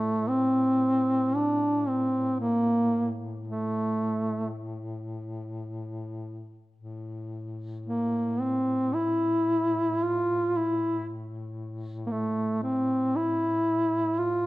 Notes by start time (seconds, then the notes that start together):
Already playing: A2 A3
0.29 C4
1.36 D4
1.88 C4
2.40 A#3
3.47 A3
6.76 A2
7.86 A#3
8.41 C4
8.94 E4
10.03 F4
10.57 E4
12.07 A#3
12.11 A3
12.63 C4
13.16 E4
14.18 F4